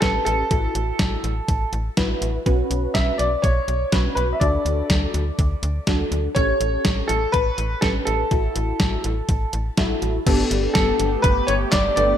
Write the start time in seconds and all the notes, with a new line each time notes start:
0.01 A1 C#4 G4 A4 B4, kick, snare, closed hi-hat
0.25 A1 A4, closed hi-hat
0.51 A1 E4 F#4 A4, kick, closed hi-hat
0.75 A1, closed hi-hat
0.99 A1, kick, snare, closed hi-hat
1.24 A1, closed hi-hat
1.48 A1, kick, closed hi-hat
1.73 A1, closed hi-hat
1.97 A1 E4 F#4 B4, kick, snare, closed hi-hat
2.22 A1, closed hi-hat
2.46 B1 C#4 F#4 B4, kick, closed hi-hat
2.71 B1, closed hi-hat
2.94 B1 E5, kick, snare, closed hi-hat
3.18 B1 D5, closed hi-hat
3.42 B1 C#5, kick, closed hi-hat
3.68 B1, closed hi-hat
3.92 B1 C#4 F#4 B4, kick, snare, closed hi-hat
4.15 B1 B4, closed hi-hat
4.33 E5
4.40 D2 D4 F#4 A4 D5, kick, closed hi-hat
4.65 D2, closed hi-hat
4.90 D2, kick, snare, closed hi-hat
5.14 D2, closed hi-hat
5.39 D2, kick, closed hi-hat
5.63 D2, closed hi-hat
5.87 D2 D4 F#4 A4, kick, snare, closed hi-hat
6.12 D2, closed hi-hat
6.35 A1 C#4 G4 A4 C#5, kick, closed hi-hat
6.61 A1, closed hi-hat
6.85 A1, kick, snare, closed hi-hat
7.08 A1 A4, closed hi-hat
7.32 A1 B4, kick, closed hi-hat
7.58 A1, closed hi-hat
7.81 A1 C#4 G4 A4 B4, kick, snare, closed hi-hat
8.05 A1 A4, closed hi-hat
8.31 A1 E4 F#4 A4, kick, closed hi-hat
8.56 A1, closed hi-hat
8.80 A1, kick, snare, closed hi-hat
9.04 A1, closed hi-hat
9.29 A1, kick, closed hi-hat
9.53 A1, closed hi-hat
9.78 A1 E4 F#4 A4, kick, snare, closed hi-hat
10.02 A1, closed hi-hat
10.26 G1 A3 B3 D4 G4 A4, kick, closed hi-hat, crash
10.51 G1, closed hi-hat
10.74 G1 A4, kick, snare, closed hi-hat
11.00 G1, closed hi-hat
11.22 G1 B4, kick, closed hi-hat
11.47 G1 C#5, closed hi-hat
11.71 G1 D5, kick, snare, clap, closed hi-hat
11.96 G1 B3 D4 G4 A4 D5, closed hi-hat